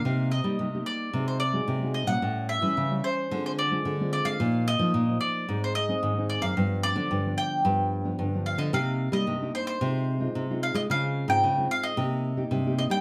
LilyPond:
<<
  \new Staff \with { instrumentName = "Mandolin" } { \time 4/4 \key c \minor \tempo 4 = 111 f''8 ees''4 d''8. c''16 d''4 ees''16 ges''16~ | ges''8 e''4 c''8. c''16 d''4 d''16 f''16~ | f''8 ees''4 d''8. c''16 ees''4 d''16 f''16~ | f''8 d''4 g''4. r8 f''16 ees''16 |
f''8. ees''8. c''16 c''4.~ c''16 f''16 ees''16 | f''8. g''8. f''16 ees''4.~ ees''16 ees''16 g''16 | }
  \new Staff \with { instrumentName = "Nylon-string guitar" } { \time 4/4 \key c \minor << { <bes ees' g'>8 r16 <bes ees' g'>8 <bes ees' g'>8. <aes ees' ges'>8 r16 <aes ees' ges'>8 <aes ees' ges'>8 <g des' e'>16~ | <g des' e'>8. <g cis' e'>8 <g cis' e'>8. <aes c' f'>8. <aes c' f'>8 <aes c' f'>8. | <f bes ees'>8 r16 <f bes ees'>8 <f bes ees'>8. <aes c' ees'>8 r16 <aes c' ees'>8 <aes c' ees'>8. | <f b d'>8. <f b d'>8 <f b d'>8. <f b d'>8. <f b d'>8 <f b d'>8. |
<bes ees' g'>8. <bes ees' g'>8 <bes ees' g'>8. <aes ees' f'>8. <aes ees' f'>8 <aes ees' f'>8. | <aes c' f'>8. <aes c' f'>8 <aes c' f'>8. <bes ees' g'>8. <bes ees' g'>8 <bes ees' g'>8. | } \\ { c4 g4 c4 c4 | a,4 e4 d4 d4 | bes,4 f4 aes,4 ees4 | g,4 d4 g,4 d4 |
c4 g,4 c4 c4 | des4 aes,4 c4 g,4 | } >> }
  \new Staff \with { instrumentName = "Nylon-string guitar" } { \clef bass \time 4/4 \key c \minor c8. g16 c8 r8 c4 c8. bes,16 | a,8. e16 cis8 r8 d4 d8. aes16 | bes,8. f16 bes,8 r8 aes,4 aes,8. fis,16 | g,8. d16 g,8 r8 g,4 g,8. d16 |
c8. g16 c8 r8 c4 c8. aes16 | des8. aes,16 des8 r8 c4 c8. g16 | }
>>